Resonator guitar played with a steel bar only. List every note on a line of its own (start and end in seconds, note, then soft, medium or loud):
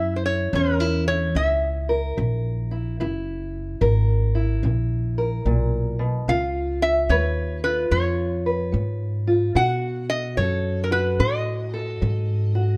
0.00 0.13 E5 loud
0.16 0.25 C5 medium
0.26 0.55 C#5 medium
0.55 1.04 A#4 medium
1.08 1.34 C#5 medium
1.36 5.42 E5 medium
6.29 6.82 F5 medium
6.82 7.12 E5 loud
7.10 7.60 C#5 medium
7.64 7.91 B4 medium
7.91 9.61 C#5 medium
9.56 10.06 F#5 medium
10.10 10.37 D#5 loud
10.37 10.83 C#5 medium
10.84 10.92 A#4 medium
10.92 11.22 B4 medium
11.20 12.77 D#5 medium